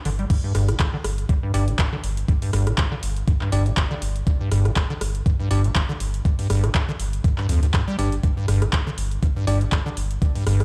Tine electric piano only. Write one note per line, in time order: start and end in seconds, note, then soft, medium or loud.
1.54 1.64 D4 medium
1.54 1.64 G4 medium
1.54 1.64 D5 loud
3.52 3.62 D4 medium
3.52 3.62 G4 medium
3.52 3.62 D5 loud
5.51 5.61 D4 medium
5.51 5.61 G4 medium
5.51 5.61 D5 loud
7.99 8.14 D4 medium
7.99 8.14 G4 medium
7.99 8.14 D5 medium
9.47 9.57 D4 medium
9.47 9.57 G4 medium
9.47 9.57 D5 loud